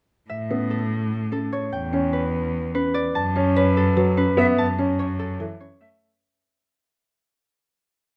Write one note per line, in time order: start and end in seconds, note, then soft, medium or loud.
0.29 1.61 A2 medium
0.29 4.19 E5 medium
0.51 0.77 B3 soft
0.51 0.77 C#4 soft
0.70 1.31 A4 soft
1.32 1.59 C#4 medium
1.32 1.75 A4 medium
1.53 1.75 C#5 medium
1.73 3.04 E2 medium
1.73 3.17 G5 medium
1.93 2.20 C#4 medium
2.13 2.73 B4 medium
2.75 3.02 C#4 medium
2.75 3.17 B4 medium
2.94 3.17 D5 medium
3.15 4.47 F#2 medium
3.15 4.57 A5 medium
3.36 3.63 C#4 medium
3.56 4.16 B4 medium
3.56 3.83 C#5 medium
3.77 5.18 A4 medium
3.96 4.24 F#3 medium
3.96 4.24 B4 medium
4.17 4.45 C#4 medium
4.17 4.60 B4 medium
4.37 4.65 B3 medium
4.37 4.60 E5 medium
4.37 4.46 E5 medium
4.58 5.89 F#2 medium
4.58 6.03 A5 medium
4.79 5.06 C#4 medium
4.99 5.26 C#5 medium
4.99 5.59 C#5 medium
5.19 6.03 A4 medium
5.40 5.67 E3 medium
5.40 5.67 A4 medium
5.61 5.88 C#4 medium
5.61 6.03 C#5 medium
5.81 6.08 A3 medium
5.81 6.03 E5 medium
5.81 5.89 E5 medium